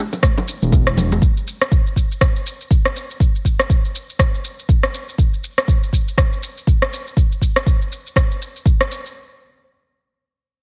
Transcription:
Already playing: A3 C4 E4 G4 C5
0.13 low bongo, shaker
0.23 kick, cross-stick, high conga, shaker
0.38 low bongo, shaker
0.48 shaker
0.62 E1, high conga, shaker
0.72 kick, low bongo, shaker
0.87 cross-stick, shaker
0.97 low bongo, low conga, shaker
1.12 high bongo, high conga, shaker
1.22 kick, shaker
1.37 shaker
1.47 shaker
1.61 cross-stick, shaker
1.72 kick, shaker
1.87 shaker
1.96 kick, shaker
2.12 shaker
2.21 kick, cross-stick, shaker
2.36 shaker
2.46 shaker
2.61 shaker
2.71 kick, shaker
2.85 cross-stick, shaker
2.96 shaker
3.11 shaker
3.20 kick, shaker
3.35 shaker
3.45 kick, shaker
3.59 cross-stick, shaker
3.70 kick, shaker
3.85 shaker
3.95 shaker
4.10 shaker
4.19 kick, cross-stick, shaker
4.34 shaker
4.44 shaker
4.59 shaker
4.69 kick, shaker
4.83 cross-stick, shaker
4.94 shaker
5.09 shaker
5.18 kick, shaker
5.34 shaker
5.44 shaker
5.58 cross-stick, shaker
5.68 kick, shaker
5.83 shaker
5.93 kick, shaker
6.08 shaker
6.18 kick, cross-stick, shaker
6.33 shaker
6.43 shaker
6.58 shaker
6.67 kick, shaker
6.82 cross-stick, shaker
6.93 shaker
7.07 shaker
7.17 kick, shaker
7.32 shaker
7.42 kick, shaker
7.56 cross-stick, shaker
7.66 kick, shaker
7.82 shaker
7.92 shaker
8.07 shaker
8.16 kick, cross-stick, shaker
8.31 shaker
8.42 shaker
8.56 shaker
8.66 kick, shaker
8.81 cross-stick, shaker
8.91 shaker
9.06 shaker

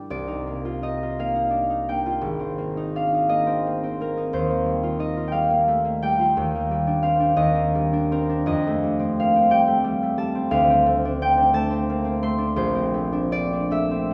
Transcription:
Already playing: G2 G3 D4 E4 G4 A#4
0.10 C2 D5
0.28 D#4
0.47 A#3
0.65 F4
0.83 D#4 D#5
1.03 F4
1.19 A#3 F5
1.35 D#4
1.51 D4
1.70 D#4
1.89 A#3 G5
2.06 F4
2.21 G#1
2.39 C4
2.58 A#3
2.77 D#4
2.95 D4 F5
3.14 D#4
3.29 A#3 D#5
3.47 C4
3.66 A#3
3.83 C4
4.01 A#3 A#4
4.17 D#4
4.33 D#2 C5
4.50 A#3
4.65 G3
4.83 F4
4.99 D#4 D#5
5.17 F4
5.28 G5
5.32 G3 F5
5.50 A#3
5.68 A3
5.85 A#3
6.02 G3 G5
6.19 F4
6.37 D#2
6.55 A#3
6.71 G3
6.87 D4
7.03 C4 F5
7.20 D4
7.36 D#2 D#5
7.55 A#3
7.75 G3
7.93 D4
8.11 C4 A#4
8.29 D4
8.46 F2 D#5
8.67 A3
8.84 G3
8.99 C4
9.19 A#3 F5
9.35 C4
9.50 G3 G5
9.68 A3
9.84 G3
10.03 A3
10.18 G3 A5
10.35 C4
10.51 D2 F5
10.70 C4
10.86 A3
11.05 D4
11.22 C4 G5
11.38 D4
11.53 A3 A5
11.71 C4
11.90 A#3
12.05 C4
12.23 A3 C6
12.38 D4
12.56 A#1 C5
12.75 C4
12.94 A3
13.13 D4
13.32 C4 D5
13.53 D4
13.71 A3 E5
13.91 C4
14.11 A#3

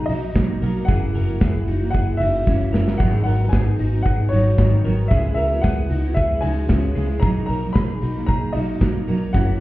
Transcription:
0.06 B1 B2 D#4 F#4 D#5, open hi-hat
0.10 F#3 A#3 D#4
0.34 B1 B2 F#3 A#3 D#4 F#4, kick, snare, closed hi-hat
0.62 B1 B2 F#3 A#3 D#4 F#4 A#4, open hi-hat
0.85 F#1 F#2 C#3 E3 E4 G#4 F#5, kick, closed hi-hat
0.89 A#3 E4
1.14 F#1 F#4 A#4, open hi-hat
1.28 E3 A#3 E4
1.40 F#1 E4 G#4, kick, snare, closed hi-hat
1.68 F#1 D#4 F#4, open hi-hat
1.81 E3 A#3 E4
1.90 E4 G#4 F#5, closed hi-hat
1.95 F#1, kick
2.17 F#1 C#3 E3 D#4 F#4 E5, open hi-hat
2.23 A#3 E4
2.46 F#1 C#3 E3 A#3 C#4 F#4, kick, snare
2.50 E4
2.73 F#1 C#3 E3 A#3 F#4 A#4, snare
2.77 E4
2.88 snare
2.98 G#1 G#2 D#3 F#3 D#4 G#4 F#5, kick, splash
3.02 B3 D#4
3.24 G#1 F#4 A#4 F#5, open hi-hat
3.40 F#3 B3 D#4
3.49 G#4 G#5, kick, closed hi-hat
3.53 G#1 D#4, snare
3.79 G#1 D#4 F#4, open hi-hat
3.92 F#3 B3 D#4
4.02 G#1 D#4 G#4 F#5, kick, closed hi-hat
4.29 G#1 D#3 F#3 D#4 F#4 C#5, open hi-hat
4.33 B3 D#4
4.58 G#1 D#3 F#3 B3 D#4 F#4, kick, snare, closed hi-hat
4.62 D#4
4.84 G#1 D#3 F#3 B3 D#4 F#4 A#4, open hi-hat
5.08 C#2 C#3 G#3 E4 G#4 E5, kick, closed hi-hat
5.12 B3 E4
5.34 C#2 F#4 A#4 E5, open hi-hat
5.52 G#3 B3 E4
5.61 C#2 E4 G#4 F#5, kick, snare, closed hi-hat
5.90 C#2 D#4 F#4, open hi-hat
6.05 G#3 B3 E4
6.14 C#2 E4 G#4 E5, kick, closed hi-hat
6.41 C#2 C#3 G#3 D#4 F#4 G#5, open hi-hat
6.46 B3 E4
6.69 C#2 C#3 G#3 B3 C#4 F#4, kick, snare, closed hi-hat
6.73 E4
6.95 C#2 C#3 G#3 B3 E4 G#4, open hi-hat
7.20 B1 B2 D#4 G#4 A#5, kick, closed hi-hat
7.24 F#3 A#3 D#4
7.46 B1 F#4 A#4 A#5, open hi-hat
7.61 F#3 A#3 D#4
7.73 B1 D#4 G#4 B5, kick, snare, closed hi-hat
8.01 B1 D#4 F#4, open hi-hat
8.15 F#3 A#3 D#4
8.26 B1 D#4 G#4 A#5, kick, closed hi-hat
8.53 B1 B2 F#3 A#3 D#4 F#4 D#5, open hi-hat
8.57 D#4
8.81 B1 B2 F#3 A#3 D#4 F#4, kick, snare, closed hi-hat
8.85 D#4
9.08 B1 B2 F#3 A#3 D#4 F#4 A#4, open hi-hat
9.33 F#1 F#2 C#3 E3 A#3 C#4 E4 F#4 F#5, kick, closed hi-hat

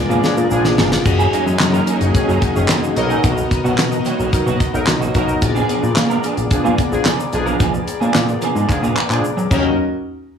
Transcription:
Already playing: G#3 B3 D4 F4 G#4 A#4 D5
0.09 A#2 F3 B3 D4 G#4, shaker
0.23 F3 D4 G#4, muted clean electric guitar stroke, snare, shaker
0.37 A#2, muted clean electric guitar stroke, shaker
0.50 A#1 F3 D4 G#4, muted clean electric guitar stroke, shaker
0.64 muted clean electric guitar stroke, snare, shaker
0.77 G1 F3 B3 D4 G#4, snare, shaker
0.92 muted clean electric guitar stroke, snare, shaker
1.05 F#1 F#3 A#3 C#4 D#4 F#4 G#4 A#4 D#5, muted clean electric guitar stroke, kick, crash, shaker
1.19 F#3 A#3 D#4 G#4, shaker
1.32 F#3 A#3 D#4 G#4, closed hi-hat, shaker
1.46 F#2, muted clean electric guitar stroke, shaker
1.59 F#2, muted clean electric guitar stroke, snare, clap, closed hi-hat, shaker
1.73 F#3 A#3 D#4 A#4, shaker
1.87 F#3 A#3 D#4 G#4, closed hi-hat, shaker
2.01 F#1, muted clean electric guitar stroke, closed hi-hat, shaker
2.14 F#2 D#3 C#4 G#4, muted clean electric guitar stroke, kick, closed hi-hat, shaker
2.28 F#2 F#3 A#3 D#4 G#4, shaker
2.42 muted clean electric guitar stroke, kick, closed hi-hat, shaker
2.55 F#1 D#3 C#4 G#4, muted clean electric guitar stroke, shaker
2.68 F#3 A#3 D#4 G#4, snare, clap, closed hi-hat, shaker
2.83 muted clean electric guitar stroke, shaker
2.96 B1 F#3 B3 D#4 F#4 A#4 D#5, muted clean electric guitar stroke, closed hi-hat, shaker
3.09 F#3 A#3 D#4 G#4, shaker
3.23 B1 F#3 A#3 D#4 F#4, kick, closed hi-hat, shaker
3.37 muted clean electric guitar stroke, shaker
3.51 muted clean electric guitar stroke, kick, closed hi-hat, shaker
3.64 B2 F#3 A#3 D#4 F#4, shaker
3.78 B2, muted clean electric guitar stroke, snare, clap, closed hi-hat, shaker
3.92 muted clean electric guitar stroke, shaker
4.05 F#3 A#3 D#4 F#4, closed hi-hat, shaker
4.19 B1 F#3 A#3 D#4 F#4, shaker
4.32 B2 F#3 D#4 A#4, muted clean electric guitar stroke, kick, closed hi-hat, shaker
4.46 B2 F#3 A#3 D#4 F#4, shaker
4.60 muted clean electric guitar stroke, kick, closed hi-hat, shaker
4.73 B1 F#3 D#4 A#4, muted clean electric guitar stroke, shaker
4.87 B1, muted clean electric guitar stroke, snare, clap, closed hi-hat, shaker
5.01 F#3 A#3 D#4 F#4, shaker
5.14 B1 F#3 A#3 D#4 F#4 A#4, kick, closed hi-hat, shaker
5.28 muted clean electric guitar stroke, shaker
5.42 A#1 B3 G#4 A#4 D5, muted clean electric guitar stroke, kick, closed hi-hat, shaker
5.55 F3 B3 D4 G#4, shaker
5.69 F3 B3 D4 G#4, closed hi-hat, shaker
5.83 A#2, muted clean electric guitar stroke, shaker
5.96 A#2, muted clean electric guitar stroke, snare, clap, closed hi-hat, shaker
6.09 F3 B3 D4 A#4, shaker
6.23 F3 B3 D4 G#4, closed hi-hat, shaker
6.37 A#1, muted clean electric guitar stroke, closed hi-hat, shaker
6.50 A#2 F3 D4 G#4, muted clean electric guitar stroke, kick, closed hi-hat, shaker
6.64 A#2 F3 B3 D4 G#4, shaker
6.78 muted clean electric guitar stroke, kick, closed hi-hat, shaker
6.91 A#1 F3 D4 G#4, muted clean electric guitar stroke, shaker
7.05 F3 B3 D4 G#4, snare, clap, closed hi-hat, shaker
7.18 muted clean electric guitar stroke, shaker
7.32 B1 F3 D4 G#4, muted clean electric guitar stroke, closed hi-hat, shaker
7.46 F3 B3 D4 A#4, shaker
7.60 A#1 F3 B3 D4 G#4, kick, closed hi-hat, shaker
7.73 muted clean electric guitar stroke, shaker
7.87 muted clean electric guitar stroke, closed hi-hat, shaker
8.00 A#2 F3 B3 D4 G#4, shaker
8.14 A#2, muted clean electric guitar stroke, snare, clap, closed hi-hat, shaker
8.28 muted clean electric guitar stroke, shaker
8.42 F3 B3 D4 G#4, closed hi-hat, shaker
8.55 G#2 F3 B3 D4 G#4, shaker
8.69 F3 D4 G#4, muted clean electric guitar stroke, kick, clap, shaker
8.82 A#2 F3 B3 D4 G#4, shaker
8.96 muted clean electric guitar stroke, clap, shaker
9.10 A#2 F3 D4 G#4, muted clean electric guitar stroke, clap, shaker
9.24 muted clean electric guitar stroke, shaker
9.37 F#2, muted clean electric guitar stroke, shaker
9.51 D#2 F#3 A#3 C#4 D#4 F#4 A#4 D#5, kick, crash, shaker

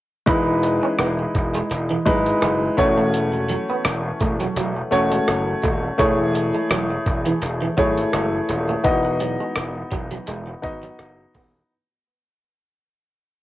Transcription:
0.26 E1 E3 G#3 D#4 E4 B4, kick, closed hi-hat
0.63 muted clean electric guitar stroke, closed hi-hat
0.83 C#4
0.99 E1 B3, cross-stick, closed hi-hat
1.19 muted clean electric guitar stroke
1.35 E1, kick, closed hi-hat
1.54 G#3, closed hi-hat
1.71 E1, muted clean electric guitar stroke, closed hi-hat
1.91 E3
2.06 G#1 F#3 G#3 D#4 E4 B4, kick, closed hi-hat
2.26 closed hi-hat
2.42 F#1 G#3, cross-stick, closed hi-hat
2.77 E1 E3 A3 C#4 F#4 C#5, muted clean electric guitar stroke, kick, closed hi-hat
2.98 A3
3.14 closed hi-hat
3.34 muted clean electric guitar stroke
3.49 F#3, closed hi-hat
3.70 B3
3.85 E1, muted clean electric guitar stroke, cross-stick, closed hi-hat
4.21 E1 A3, kick, closed hi-hat
4.40 F#3, closed hi-hat
4.56 E1 F#3, closed hi-hat
4.77 muted clean electric guitar stroke
4.91 E1 A3 C#4 F#4 C#5, closed hi-hat
5.12 G#3, closed hi-hat
5.28 F#1, cross-stick, closed hi-hat
5.63 D#1 A3, kick, closed hi-hat
5.98 E1 E3 A3 E4 G#4 C#5, kick, closed hi-hat
6.35 muted clean electric guitar stroke, closed hi-hat
6.54 G#3
6.70 E1 F#3, cross-stick, closed hi-hat
6.90 muted clean electric guitar stroke
7.06 E1, kick, closed hi-hat
7.26 E3, closed hi-hat
7.42 E1, muted clean electric guitar stroke, closed hi-hat
7.62 E3
7.77 G#1 F#3 A3 E4 G#4 C#5, kick, closed hi-hat
7.98 closed hi-hat
8.13 F#1 G#3, cross-stick, closed hi-hat
8.49 D#1, muted clean electric guitar stroke, closed hi-hat
8.69 A3
8.84 E1 E3 B3 D#4 F#4 D#5, kick, closed hi-hat
9.05 muted clean electric guitar stroke
9.20 F#3, closed hi-hat
9.40 G#3
9.56 E1, muted clean electric guitar stroke, cross-stick, closed hi-hat
9.91 E1 F#3, kick, closed hi-hat
10.11 F#3, closed hi-hat
10.27 E1 G#3, closed hi-hat
10.47 muted clean electric guitar stroke
10.62 G#1 B3 D#4 F#4 D#5, kick, closed hi-hat
10.83 F#3, closed hi-hat
10.99 F#1, cross-stick, closed hi-hat
11.35 D#1 B3, kick, open hi-hat

